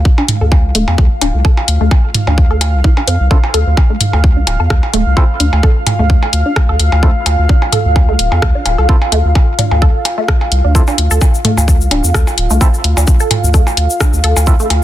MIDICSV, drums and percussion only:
0, 0, Header, 1, 3, 480
1, 0, Start_track
1, 0, Key_signature, -1, "minor"
1, 0, Tempo, 465116
1, 1493, Time_signature, 4, 2, 24, 8
1, 15314, End_track
2, 0, Start_track
2, 0, Title_t, "Percussion blips"
2, 186, Note_on_c, 9, 77, 47
2, 289, Note_off_c, 9, 77, 0
2, 533, Note_on_c, 9, 77, 46
2, 636, Note_off_c, 9, 77, 0
2, 905, Note_on_c, 9, 77, 43
2, 1009, Note_off_c, 9, 77, 0
2, 1253, Note_on_c, 9, 77, 45
2, 1356, Note_off_c, 9, 77, 0
2, 1625, Note_on_c, 9, 77, 47
2, 1728, Note_off_c, 9, 77, 0
2, 1973, Note_on_c, 9, 77, 46
2, 2076, Note_off_c, 9, 77, 0
2, 2346, Note_on_c, 9, 77, 45
2, 2449, Note_off_c, 9, 77, 0
2, 2694, Note_on_c, 9, 77, 47
2, 2797, Note_off_c, 9, 77, 0
2, 3066, Note_on_c, 9, 77, 45
2, 3169, Note_off_c, 9, 77, 0
2, 3546, Note_on_c, 9, 77, 44
2, 3649, Note_off_c, 9, 77, 0
2, 3893, Note_on_c, 9, 77, 46
2, 3997, Note_off_c, 9, 77, 0
2, 4266, Note_on_c, 9, 77, 42
2, 4369, Note_off_c, 9, 77, 0
2, 4614, Note_on_c, 9, 77, 45
2, 4717, Note_off_c, 9, 77, 0
2, 4985, Note_on_c, 9, 77, 43
2, 5089, Note_off_c, 9, 77, 0
2, 5333, Note_on_c, 9, 77, 43
2, 5436, Note_off_c, 9, 77, 0
2, 5705, Note_on_c, 9, 77, 46
2, 5808, Note_off_c, 9, 77, 0
2, 6053, Note_on_c, 9, 77, 42
2, 6156, Note_off_c, 9, 77, 0
2, 6425, Note_on_c, 9, 77, 45
2, 6528, Note_off_c, 9, 77, 0
2, 6773, Note_on_c, 9, 77, 43
2, 6876, Note_off_c, 9, 77, 0
2, 7145, Note_on_c, 9, 77, 45
2, 7248, Note_off_c, 9, 77, 0
2, 7493, Note_on_c, 9, 77, 43
2, 7596, Note_off_c, 9, 77, 0
2, 7864, Note_on_c, 9, 77, 40
2, 7967, Note_off_c, 9, 77, 0
2, 8212, Note_on_c, 9, 77, 41
2, 8315, Note_off_c, 9, 77, 0
2, 8584, Note_on_c, 9, 77, 40
2, 8688, Note_off_c, 9, 77, 0
2, 8933, Note_on_c, 9, 77, 41
2, 9036, Note_off_c, 9, 77, 0
2, 9305, Note_on_c, 9, 77, 45
2, 9408, Note_off_c, 9, 77, 0
2, 9653, Note_on_c, 9, 77, 44
2, 9756, Note_off_c, 9, 77, 0
2, 10025, Note_on_c, 9, 77, 41
2, 10128, Note_off_c, 9, 77, 0
2, 10373, Note_on_c, 9, 77, 43
2, 10476, Note_off_c, 9, 77, 0
2, 10745, Note_on_c, 9, 77, 43
2, 10848, Note_off_c, 9, 77, 0
2, 11225, Note_on_c, 9, 77, 44
2, 11329, Note_off_c, 9, 77, 0
2, 11573, Note_on_c, 9, 77, 45
2, 11677, Note_off_c, 9, 77, 0
2, 11945, Note_on_c, 9, 77, 41
2, 12049, Note_off_c, 9, 77, 0
2, 12293, Note_on_c, 9, 77, 46
2, 12396, Note_off_c, 9, 77, 0
2, 12665, Note_on_c, 9, 77, 45
2, 12769, Note_off_c, 9, 77, 0
2, 13013, Note_on_c, 9, 77, 46
2, 13117, Note_off_c, 9, 77, 0
2, 13385, Note_on_c, 9, 77, 49
2, 13488, Note_off_c, 9, 77, 0
2, 13733, Note_on_c, 9, 77, 44
2, 13836, Note_off_c, 9, 77, 0
2, 14105, Note_on_c, 9, 77, 47
2, 14208, Note_off_c, 9, 77, 0
2, 14453, Note_on_c, 9, 77, 49
2, 14556, Note_off_c, 9, 77, 0
2, 14825, Note_on_c, 9, 77, 50
2, 14928, Note_off_c, 9, 77, 0
2, 15173, Note_on_c, 9, 77, 47
2, 15276, Note_off_c, 9, 77, 0
2, 15314, End_track
3, 0, Start_track
3, 0, Title_t, "Drums"
3, 53, Note_on_c, 9, 36, 127
3, 156, Note_off_c, 9, 36, 0
3, 293, Note_on_c, 9, 45, 93
3, 294, Note_on_c, 9, 42, 101
3, 397, Note_off_c, 9, 42, 0
3, 397, Note_off_c, 9, 45, 0
3, 533, Note_on_c, 9, 36, 127
3, 636, Note_off_c, 9, 36, 0
3, 773, Note_on_c, 9, 42, 99
3, 877, Note_off_c, 9, 42, 0
3, 1013, Note_on_c, 9, 36, 119
3, 1117, Note_off_c, 9, 36, 0
3, 1253, Note_on_c, 9, 42, 90
3, 1357, Note_off_c, 9, 42, 0
3, 1493, Note_on_c, 9, 36, 122
3, 1597, Note_off_c, 9, 36, 0
3, 1734, Note_on_c, 9, 42, 92
3, 1837, Note_off_c, 9, 42, 0
3, 1973, Note_on_c, 9, 36, 124
3, 2077, Note_off_c, 9, 36, 0
3, 2213, Note_on_c, 9, 45, 88
3, 2214, Note_on_c, 9, 42, 92
3, 2316, Note_off_c, 9, 45, 0
3, 2317, Note_off_c, 9, 42, 0
3, 2454, Note_on_c, 9, 36, 125
3, 2557, Note_off_c, 9, 36, 0
3, 2694, Note_on_c, 9, 42, 97
3, 2797, Note_off_c, 9, 42, 0
3, 2934, Note_on_c, 9, 36, 121
3, 3037, Note_off_c, 9, 36, 0
3, 3174, Note_on_c, 9, 42, 89
3, 3277, Note_off_c, 9, 42, 0
3, 3414, Note_on_c, 9, 36, 126
3, 3517, Note_off_c, 9, 36, 0
3, 3653, Note_on_c, 9, 42, 88
3, 3757, Note_off_c, 9, 42, 0
3, 3894, Note_on_c, 9, 36, 117
3, 3997, Note_off_c, 9, 36, 0
3, 4133, Note_on_c, 9, 45, 81
3, 4134, Note_on_c, 9, 42, 91
3, 4237, Note_off_c, 9, 42, 0
3, 4237, Note_off_c, 9, 45, 0
3, 4373, Note_on_c, 9, 36, 116
3, 4477, Note_off_c, 9, 36, 0
3, 4613, Note_on_c, 9, 42, 92
3, 4717, Note_off_c, 9, 42, 0
3, 4853, Note_on_c, 9, 36, 119
3, 4853, Note_on_c, 9, 37, 96
3, 4956, Note_off_c, 9, 36, 0
3, 4956, Note_off_c, 9, 37, 0
3, 5093, Note_on_c, 9, 42, 87
3, 5196, Note_off_c, 9, 42, 0
3, 5333, Note_on_c, 9, 36, 113
3, 5436, Note_off_c, 9, 36, 0
3, 5573, Note_on_c, 9, 42, 89
3, 5676, Note_off_c, 9, 42, 0
3, 5813, Note_on_c, 9, 36, 117
3, 5916, Note_off_c, 9, 36, 0
3, 6053, Note_on_c, 9, 42, 91
3, 6053, Note_on_c, 9, 45, 89
3, 6156, Note_off_c, 9, 42, 0
3, 6156, Note_off_c, 9, 45, 0
3, 6293, Note_on_c, 9, 36, 111
3, 6396, Note_off_c, 9, 36, 0
3, 6532, Note_on_c, 9, 42, 92
3, 6636, Note_off_c, 9, 42, 0
3, 6773, Note_on_c, 9, 36, 110
3, 6773, Note_on_c, 9, 37, 101
3, 6876, Note_off_c, 9, 36, 0
3, 6876, Note_off_c, 9, 37, 0
3, 7012, Note_on_c, 9, 42, 86
3, 7115, Note_off_c, 9, 42, 0
3, 7252, Note_on_c, 9, 36, 112
3, 7356, Note_off_c, 9, 36, 0
3, 7492, Note_on_c, 9, 42, 87
3, 7596, Note_off_c, 9, 42, 0
3, 7733, Note_on_c, 9, 36, 111
3, 7836, Note_off_c, 9, 36, 0
3, 7972, Note_on_c, 9, 42, 90
3, 7972, Note_on_c, 9, 45, 88
3, 8075, Note_off_c, 9, 45, 0
3, 8076, Note_off_c, 9, 42, 0
3, 8213, Note_on_c, 9, 36, 115
3, 8316, Note_off_c, 9, 36, 0
3, 8453, Note_on_c, 9, 42, 86
3, 8556, Note_off_c, 9, 42, 0
3, 8693, Note_on_c, 9, 36, 108
3, 8693, Note_on_c, 9, 37, 99
3, 8796, Note_off_c, 9, 36, 0
3, 8796, Note_off_c, 9, 37, 0
3, 8933, Note_on_c, 9, 42, 79
3, 9036, Note_off_c, 9, 42, 0
3, 9173, Note_on_c, 9, 36, 117
3, 9276, Note_off_c, 9, 36, 0
3, 9413, Note_on_c, 9, 42, 86
3, 9516, Note_off_c, 9, 42, 0
3, 9653, Note_on_c, 9, 36, 119
3, 9756, Note_off_c, 9, 36, 0
3, 9893, Note_on_c, 9, 42, 90
3, 9893, Note_on_c, 9, 45, 89
3, 9996, Note_off_c, 9, 45, 0
3, 9997, Note_off_c, 9, 42, 0
3, 10133, Note_on_c, 9, 36, 115
3, 10236, Note_off_c, 9, 36, 0
3, 10373, Note_on_c, 9, 42, 91
3, 10476, Note_off_c, 9, 42, 0
3, 10613, Note_on_c, 9, 36, 110
3, 10613, Note_on_c, 9, 37, 104
3, 10717, Note_off_c, 9, 36, 0
3, 10717, Note_off_c, 9, 37, 0
3, 10853, Note_on_c, 9, 42, 84
3, 10956, Note_off_c, 9, 42, 0
3, 11093, Note_on_c, 9, 36, 123
3, 11099, Note_on_c, 9, 82, 59
3, 11196, Note_off_c, 9, 36, 0
3, 11202, Note_off_c, 9, 82, 0
3, 11221, Note_on_c, 9, 82, 38
3, 11324, Note_off_c, 9, 82, 0
3, 11333, Note_on_c, 9, 42, 94
3, 11436, Note_off_c, 9, 42, 0
3, 11465, Note_on_c, 9, 82, 74
3, 11569, Note_off_c, 9, 82, 0
3, 11569, Note_on_c, 9, 82, 64
3, 11573, Note_on_c, 9, 36, 118
3, 11673, Note_off_c, 9, 82, 0
3, 11676, Note_off_c, 9, 36, 0
3, 11708, Note_on_c, 9, 82, 37
3, 11811, Note_off_c, 9, 82, 0
3, 11813, Note_on_c, 9, 42, 94
3, 11813, Note_on_c, 9, 45, 97
3, 11916, Note_off_c, 9, 42, 0
3, 11916, Note_off_c, 9, 45, 0
3, 11951, Note_on_c, 9, 82, 73
3, 12053, Note_on_c, 9, 36, 122
3, 12054, Note_off_c, 9, 82, 0
3, 12057, Note_on_c, 9, 82, 60
3, 12156, Note_off_c, 9, 36, 0
3, 12160, Note_off_c, 9, 82, 0
3, 12187, Note_on_c, 9, 82, 39
3, 12290, Note_off_c, 9, 82, 0
3, 12293, Note_on_c, 9, 42, 98
3, 12396, Note_off_c, 9, 42, 0
3, 12427, Note_on_c, 9, 82, 75
3, 12530, Note_off_c, 9, 82, 0
3, 12533, Note_on_c, 9, 36, 116
3, 12533, Note_on_c, 9, 37, 107
3, 12537, Note_on_c, 9, 82, 63
3, 12636, Note_off_c, 9, 36, 0
3, 12636, Note_off_c, 9, 37, 0
3, 12641, Note_off_c, 9, 82, 0
3, 12666, Note_on_c, 9, 82, 36
3, 12769, Note_off_c, 9, 82, 0
3, 12773, Note_on_c, 9, 42, 90
3, 12876, Note_off_c, 9, 42, 0
3, 12903, Note_on_c, 9, 82, 76
3, 13007, Note_off_c, 9, 82, 0
3, 13013, Note_on_c, 9, 36, 126
3, 13014, Note_on_c, 9, 82, 66
3, 13116, Note_off_c, 9, 36, 0
3, 13117, Note_off_c, 9, 82, 0
3, 13149, Note_on_c, 9, 82, 37
3, 13252, Note_off_c, 9, 82, 0
3, 13253, Note_on_c, 9, 42, 92
3, 13356, Note_off_c, 9, 42, 0
3, 13389, Note_on_c, 9, 82, 77
3, 13489, Note_off_c, 9, 82, 0
3, 13489, Note_on_c, 9, 82, 65
3, 13493, Note_on_c, 9, 36, 127
3, 13592, Note_off_c, 9, 82, 0
3, 13596, Note_off_c, 9, 36, 0
3, 13620, Note_on_c, 9, 82, 41
3, 13724, Note_off_c, 9, 82, 0
3, 13733, Note_on_c, 9, 42, 100
3, 13733, Note_on_c, 9, 45, 90
3, 13836, Note_off_c, 9, 42, 0
3, 13836, Note_off_c, 9, 45, 0
3, 13872, Note_on_c, 9, 82, 76
3, 13972, Note_off_c, 9, 82, 0
3, 13972, Note_on_c, 9, 82, 62
3, 13973, Note_on_c, 9, 36, 123
3, 14075, Note_off_c, 9, 82, 0
3, 14076, Note_off_c, 9, 36, 0
3, 14109, Note_on_c, 9, 82, 37
3, 14212, Note_off_c, 9, 82, 0
3, 14213, Note_on_c, 9, 42, 99
3, 14316, Note_off_c, 9, 42, 0
3, 14345, Note_on_c, 9, 82, 73
3, 14448, Note_off_c, 9, 82, 0
3, 14452, Note_on_c, 9, 82, 68
3, 14453, Note_on_c, 9, 36, 123
3, 14453, Note_on_c, 9, 37, 109
3, 14555, Note_off_c, 9, 82, 0
3, 14556, Note_off_c, 9, 36, 0
3, 14556, Note_off_c, 9, 37, 0
3, 14587, Note_on_c, 9, 82, 44
3, 14690, Note_off_c, 9, 82, 0
3, 14693, Note_on_c, 9, 42, 89
3, 14796, Note_off_c, 9, 42, 0
3, 14827, Note_on_c, 9, 82, 86
3, 14927, Note_off_c, 9, 82, 0
3, 14927, Note_on_c, 9, 82, 70
3, 14933, Note_on_c, 9, 36, 127
3, 15030, Note_off_c, 9, 82, 0
3, 15036, Note_off_c, 9, 36, 0
3, 15063, Note_on_c, 9, 82, 42
3, 15167, Note_off_c, 9, 82, 0
3, 15173, Note_on_c, 9, 42, 92
3, 15276, Note_off_c, 9, 42, 0
3, 15314, End_track
0, 0, End_of_file